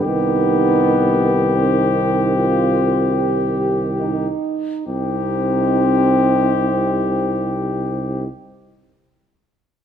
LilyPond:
<<
  \new Staff \with { instrumentName = "Cornet" } { \time 3/4 \key c \minor \tempo 4 = 36 g'2~ g'8 r8 | g'2. | }
  \new Staff \with { instrumentName = "French horn section" } { \time 3/4 \key c \minor ees'4 ees'8 f'8 g'8 ees'8 | ees'2. | }
  \new Staff \with { instrumentName = "Euphonium" } { \time 3/4 \key c \minor b4 c'4. r8 | c'2. | }
  \new Staff \with { instrumentName = "Trombone" } { \clef bass \time 3/4 \key c \minor ees2~ ees8 r8 | c2. | }
  \new Staff \with { instrumentName = "Tuba" } { \clef bass \time 3/4 \key c \minor c,2~ c,8 r8 | c,2. | }
>>